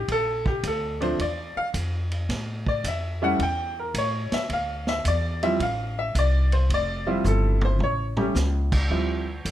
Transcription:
0.08 0.62 A#1 medium
0.08 0.47 A4 loud
0.08 kick soft
0.08 ride medium
0.46 0.64 G4 medium
0.46 kick medium
0.63 1.17 D2 medium
0.63 1.02 A4 medium
0.63 kick soft
0.63 hi-hat pedal soft
0.63 ride medium
1.00 1.17 F3 medium
1.00 1.17 A3 medium
1.00 1.17 C4 medium
1.00 1.17 D4 medium
1.00 1.19 C5 medium
1.00 ride soft
1.19 1.54 E2 medium
1.19 1.56 D5 medium
1.19 kick soft
1.19 ride medium
1.56 1.68 F5 loud
1.56 muted upright bass stroke soft
1.74 2.27 F2 loud
1.74 kick soft
1.74 hi-hat pedal medium
1.74 ride medium
2.12 ride soft
2.29 2.83 A2 medium
2.29 kick soft
2.29 snare soft
2.29 ride medium
2.66 2.85 D5 medium
2.66 kick medium
2.84 3.37 F2 medium
2.84 kick soft
2.84 hi-hat pedal medium
2.84 ride medium
2.88 3.22 E5 medium
3.22 3.38 G3 medium
3.22 3.38 A3 medium
3.22 3.38 C#4 medium
3.22 3.38 E4 medium
3.22 3.40 F#5 loud
3.39 3.93 E2 medium
3.39 3.77 G5 medium
3.39 kick soft
3.39 ride medium
3.80 3.95 A#4 medium
3.94 4.29 A2 loud
3.94 kick soft
3.94 hi-hat pedal medium
3.94 ride medium
3.98 4.33 C#5 medium
4.31 4.50 E5 medium
4.31 muted upright bass stroke soft
4.31 snare medium
4.31 ride medium
4.50 5.03 D2 medium
4.50 4.88 F5 medium
4.50 kick soft
4.50 ride medium
4.87 5.05 E5 medium
4.87 snare medium
5.05 5.58 E2 loud
5.05 5.42 D5 medium
5.05 kick soft
5.05 hi-hat pedal medium
5.05 ride medium
5.43 5.58 F3 medium
5.43 5.58 G3 medium
5.43 5.58 C4 medium
5.43 5.58 E4 medium
5.43 5.60 E5 medium
5.43 ride soft
5.60 6.13 A1 medium
5.60 5.97 F5 medium
5.60 kick soft
5.60 ride medium
5.99 6.15 E5 medium
6.15 6.68 C2 medium
6.15 6.53 D5 medium
6.15 kick soft
6.15 hi-hat pedal medium
6.15 ride medium
6.52 6.70 C5 medium
6.52 ride medium
6.70 7.23 F1 medium
6.70 kick soft
6.70 ride medium
6.74 7.08 D5 loud
7.07 7.76 F3 medium
7.07 7.76 G3 medium
7.07 7.76 C4 medium
7.07 7.76 E4 medium
7.07 7.25 F4 medium
7.24 7.78 G1 loud
7.24 7.62 A4 medium
7.24 hi-hat pedal medium
7.24 high tom soft
7.61 7.80 C5 medium
7.61 high tom medium
7.79 8.33 A1 medium
7.79 mid tom medium
7.84 8.05 C#5 medium
8.17 8.33 G3 medium
8.17 8.33 A3 medium
8.17 8.33 C#4 medium
8.17 8.33 G4 medium
8.17 mid tom loud
8.35 8.88 C#2 loud
8.35 snare medium
8.35 hi-hat pedal medium
8.72 kick medium
8.72 crash medium
8.90 9.43 D2 medium
8.90 9.24 F3 medium
8.90 9.24 G3 medium
8.90 9.24 C4 soft
8.90 9.24 E4 medium
8.90 kick soft
9.45 9.51 F2 medium
9.45 kick soft
9.45 hi-hat pedal medium
9.45 ride medium

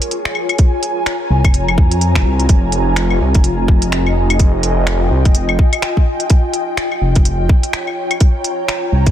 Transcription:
0.00 9.11 F4 medium
0.00 0.23 G#4 medium
0.00 2.49 C#5 medium
0.00 6.30 G#5 medium
0.00 closed hi-hat medium
0.11 closed hi-hat medium
0.25 finger snap loud
0.35 claves medium
0.40 3.82 A#5 medium
0.49 closed hi-hat soft
0.49 claves medium
0.58 kick loud
0.58 closed hi-hat medium
0.83 closed hi-hat medium
1.06 finger snap loud
1.06 closed hi-hat medium
1.30 1.43 C2 medium
1.44 1.79 F1 medium
1.44 kick loud
1.44 closed hi-hat soft
1.44 claves medium
1.54 closed hi-hat medium
1.68 claves medium
1.78 2.17 F2 medium
1.78 kick loud
1.91 closed hi-hat medium
2.01 closed hi-hat medium
2.15 2.25 D#1 medium
2.15 finger snap loud
2.15 kick medium
2.25 2.48 C2 medium
2.40 closed hi-hat soft
2.49 3.19 F1 loud
2.49 kick loud
2.49 closed hi-hat medium
2.72 closed hi-hat medium
2.94 7.13 D#5 medium
2.94 finger snap loud
2.94 closed hi-hat medium
3.10 claves soft
3.21 3.34 C2 medium
3.34 3.67 F1 medium
3.34 kick loud
3.34 closed hi-hat soft
3.44 closed hi-hat medium
3.68 5.10 F1 loud
3.68 kick loud
3.82 closed hi-hat medium
3.87 9.11 G5 medium
3.92 finger snap loud
3.92 closed hi-hat medium
4.06 claves soft
4.30 closed hi-hat soft
4.30 claves medium
4.39 kick loud
4.39 closed hi-hat medium
4.63 closed hi-hat medium
4.87 finger snap loud
4.87 closed hi-hat medium
5.11 5.24 C2 medium
5.25 5.57 F1 medium
5.25 kick loud
5.25 closed hi-hat soft
5.35 closed hi-hat medium
5.49 claves medium
5.59 kick loud
5.73 closed hi-hat medium
5.73 claves medium
5.82 finger snap loud
5.82 closed hi-hat medium
5.97 kick medium
6.20 closed hi-hat soft
6.30 kick loud
6.30 closed hi-hat medium
6.54 closed hi-hat medium
6.77 finger snap loud
6.77 closed hi-hat medium
6.92 claves soft
6.98 7.15 F1 medium
6.98 9.11 C#5 medium
7.15 7.48 F1 medium
7.15 kick loud
7.15 closed hi-hat soft
7.25 closed hi-hat medium
7.49 kick loud
7.63 closed hi-hat medium
7.73 finger snap loud
7.73 closed hi-hat medium
7.87 9.11 A#5 medium
7.87 claves soft
8.11 closed hi-hat soft
8.11 claves medium
8.20 kick loud
8.20 closed hi-hat medium
8.44 closed hi-hat medium
8.68 finger snap loud
8.68 closed hi-hat medium
8.92 9.05 C2 medium
9.06 9.11 F1 medium
9.06 kick loud
9.06 closed hi-hat soft

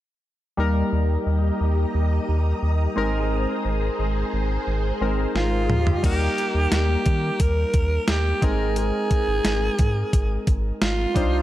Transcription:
0.57 0.83 D#2 medium
0.57 2.93 G3 medium
0.57 2.93 A#3 medium
0.57 2.94 D#4 medium
0.57 2.95 G4 medium
0.57 2.94 A#4 medium
0.57 2.95 D#5 medium
0.57 6.00 A#5 medium
0.57 6.00 D#6 medium
0.93 1.17 D#2 medium
1.27 1.51 D#2 medium
1.61 1.85 D#2 medium
1.95 2.19 D#2 loud
2.29 2.54 D#2 medium
2.63 2.87 D#2 medium
2.96 3.46 G#1 medium
2.96 4.97 G#3 medium
2.96 4.97 C4 medium
2.96 4.98 D#4 medium
2.96 5.68 G#4 medium
2.96 4.98 A#4 medium
2.96 5.68 C5 medium
3.65 3.90 G#1 medium
3.99 4.24 G#1 medium
4.33 4.58 G#1 medium
4.67 4.92 G#1 medium
5.01 5.26 G#1 medium
5.01 5.70 G#3 medium
5.01 5.70 C4 soft
5.01 5.70 D#4 soft
5.01 5.70 A#4 medium
5.35 5.71 G#1 medium
5.35 6.01 F4 medium
5.35 snare medium
5.69 5.94 D#2 medium
5.69 6.04 G4 medium
5.69 6.04 D#5 medium
5.69 mid tom medium
5.87 floor tom medium
6.03 6.28 D#2 loud
6.03 8.38 G3 medium
6.03 8.39 A#3 medium
6.03 8.39 D#4 medium
6.03 6.69 G4 medium
6.03 8.39 A#4 medium
6.03 kick loud
6.03 closed hi-hat medium
6.03 crash medium
6.38 closed hi-hat medium
6.55 6.67 D#2 medium
6.72 6.97 D#2 loud
6.72 7.42 G4 medium
6.72 snare loud
6.72 closed hi-hat medium
7.06 7.31 D#3 medium
7.06 kick medium
7.06 closed hi-hat medium
7.40 7.65 D#2 loud
7.40 8.11 A#4 medium
7.40 kick medium
7.40 closed hi-hat loud
7.74 7.99 D#2 loud
7.74 kick medium
7.74 closed hi-hat medium
8.08 8.33 D#2 loud
8.08 8.46 G4 medium
8.08 snare loud
8.08 closed hi-hat medium
8.42 8.92 G#1 medium
8.42 11.11 G#3 medium
8.42 11.11 C4 medium
8.42 11.12 D#4 medium
8.42 8.78 G#4 medium
8.42 11.12 A#4 medium
8.42 kick loud
8.42 closed hi-hat medium
8.76 10.51 G#4 loud
8.76 closed hi-hat medium
9.11 kick medium
9.11 closed hi-hat medium
9.28 9.40 G#1 medium
9.45 9.69 G#1 loud
9.45 snare loud
9.45 closed hi-hat medium
9.79 10.04 G#2 medium
9.79 kick medium
9.79 closed hi-hat medium
10.13 10.38 G#1 loud
10.13 kick medium
10.13 closed hi-hat loud
10.47 10.72 G#1 loud
10.47 kick medium
10.47 closed hi-hat medium
10.82 11.06 G#1 loud
10.82 11.42 F4 medium
10.82 snare loud
10.82 closed hi-hat medium
11.14 11.42 C2 medium
11.14 11.42 G3 medium
11.14 11.42 D4 medium
11.14 11.42 D#4 medium
11.14 11.42 C5 medium
11.14 kick loud
11.14 closed hi-hat medium

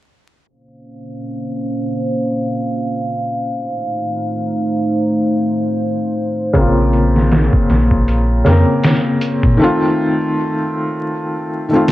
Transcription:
0.49 3.50 A#3 medium
0.49 3.49 C#4 medium
0.49 3.49 C5 medium
0.49 9.56 F5 medium
3.53 6.53 A3 medium
3.53 6.53 D#4 medium
3.53 9.56 C5 medium
6.53 7.49 A#1 medium
6.53 8.40 C#3 medium
6.53 9.56 A#3 medium
6.53 8.42 A#3 medium
6.53 kick loud
6.53 closed hi-hat medium
6.58 8.43 C4 medium
6.58 8.44 F4 medium
6.93 closed hi-hat medium
7.16 snare soft
7.31 snare loud
7.31 closed hi-hat medium
7.53 kick medium
7.70 8.43 A#1 medium
7.70 snare soft
7.70 closed hi-hat medium
7.91 kick medium
8.08 closed hi-hat medium
8.45 8.65 F2 medium
8.45 9.55 C#3 medium
8.45 9.56 A#3 medium
8.45 9.57 C4 medium
8.45 snare soft
8.45 closed hi-hat medium
8.51 9.58 A#4 medium
8.83 snare loud
8.83 closed hi-hat medium
9.21 closed hi-hat medium
9.43 9.58 A#2 medium
9.43 kick medium
9.57 11.65 D#3 medium
9.57 11.66 A3 medium
9.62 11.67 C4 medium
9.62 11.68 F4 medium
11.69 11.92 D#3 medium
11.69 11.92 A3 medium
11.73 11.92 C4 medium
11.73 11.92 F4 medium
11.88 snare medium

